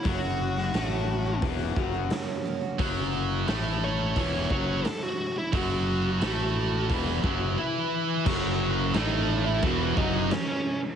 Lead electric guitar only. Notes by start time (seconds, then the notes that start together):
0.07 F#4
3.84 C#5
4.52 C#5
4.86 A4
5.03 F#4
5.38 E4
5.55 F#4
8.95 D#4 D#5
9.46 E4 E5
9.64 F#4 F#5
9.98 D#4 D#5
10.32 C#4 C#5